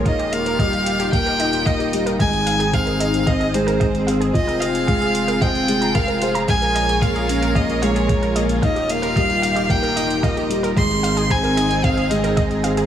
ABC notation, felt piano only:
X:1
M:4/4
L:1/8
Q:1/4=112
K:Ebmix
V:1 name="Felt piano"
E B, G, z B, E B, G, | A, z C E C A, z C | F C A, z C A, A c | A, z B, D B, A, z B, |
E B, G, z B, E B, G, | A, z C E C A, z C |]